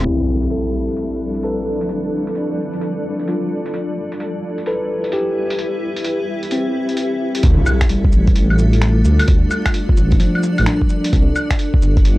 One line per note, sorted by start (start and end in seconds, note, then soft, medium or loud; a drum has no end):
0.00 7.43 G3 medium
0.00 0.24 C4 medium
0.00 1.31 G4 medium
0.00 4.50 A4 medium
0.00 1.56 E5 medium
0.04 1.01 E4 medium
0.04 closed hi-hat soft
0.04 impact medium
0.20 4.49 D4 medium
0.25 3.74 F3 medium
0.25 4.50 D5 medium
0.42 closed hi-hat medium
0.50 1.43 A4 medium
0.50 closed hi-hat soft
0.89 closed hi-hat soft
0.97 closed hi-hat medium
1.35 closed hi-hat soft
1.43 2.39 A4 medium
1.43 2.39 B4 soft
1.43 closed hi-hat medium
1.81 closed hi-hat medium
1.89 closed hi-hat soft
2.27 closed hi-hat medium
2.35 closed hi-hat medium
2.73 closed hi-hat soft
2.81 closed hi-hat medium
3.19 closed hi-hat soft
3.28 3.94 F4 soft
3.28 closed hi-hat medium
3.66 closed hi-hat medium
3.74 closed hi-hat soft
3.82 7.44 E4 medium
4.06 8.94 G4 medium
4.12 6.34 B4 medium
4.12 closed hi-hat medium
4.20 closed hi-hat medium
4.58 8.47 E5 medium
4.58 closed hi-hat soft
4.66 5.63 A4 medium
4.66 5.63 B4 medium
4.66 closed hi-hat medium
5.04 closed hi-hat soft
5.12 5.78 G4 medium
5.12 closed hi-hat medium
5.50 closed hi-hat medium
5.59 closed hi-hat soft
5.96 closed hi-hat soft
6.04 closed hi-hat soft
6.43 11.88 A4 medium
6.43 closed hi-hat soft
6.51 7.47 C4 medium
6.51 closed hi-hat soft
6.89 closed hi-hat soft
6.97 closed hi-hat medium
7.35 closed hi-hat medium
7.43 7.57 D2 loud
7.43 kick loud
7.43 closed hi-hat medium
7.43 impact medium
7.54 11.88 D4 medium
7.54 11.13 F4 medium
7.66 cabasa medium
7.66 claves medium
7.81 finger snap loud
7.81 kick medium
7.81 closed hi-hat medium
7.89 8.86 G3 medium
7.89 closed hi-hat medium
8.05 kick loud
8.12 8.35 A1 loud
8.12 cabasa medium
8.27 kick loud
8.27 closed hi-hat soft
8.36 9.04 A1 medium
8.36 closed hi-hat medium
8.40 11.89 D5 medium
8.50 claves soft
8.58 cabasa medium
8.73 closed hi-hat soft
8.81 9.78 A3 medium
8.81 finger snap loud
8.81 closed hi-hat medium
9.05 9.19 D2 loud
9.05 cabasa medium
9.19 closed hi-hat medium
9.19 claves medium
9.28 9.42 D2 loud
9.28 kick loud
9.28 closed hi-hat medium
9.51 cabasa medium
9.51 claves medium
9.66 finger snap loud
9.66 kick medium
9.66 closed hi-hat medium
9.66 claves medium
9.74 closed hi-hat medium
9.89 kick loud
9.97 10.19 A1 loud
9.97 cabasa medium
10.12 kick loud
10.12 closed hi-hat soft
10.20 11.16 F3 medium
10.20 closed hi-hat medium
10.35 claves soft
10.43 cabasa medium
10.58 10.66 A1 loud
10.58 closed hi-hat soft
10.58 claves medium
10.66 11.12 D4 medium
10.66 finger snap loud
10.66 closed hi-hat medium
10.82 kick medium
10.89 cabasa medium
11.04 closed hi-hat medium
11.13 11.27 C2 loud
11.13 12.09 D4 medium
11.13 kick loud
11.13 closed hi-hat medium
11.36 12.18 E4 medium
11.36 cabasa medium
11.36 claves medium
11.51 finger snap loud
11.51 kick medium
11.51 closed hi-hat medium
11.59 closed hi-hat medium
11.74 12.18 E5 medium
11.74 kick loud
11.80 12.04 G1 loud
11.80 12.18 G4 medium
11.80 cabasa medium
11.97 kick loud
11.97 closed hi-hat soft
12.05 12.18 G1 medium
12.05 closed hi-hat medium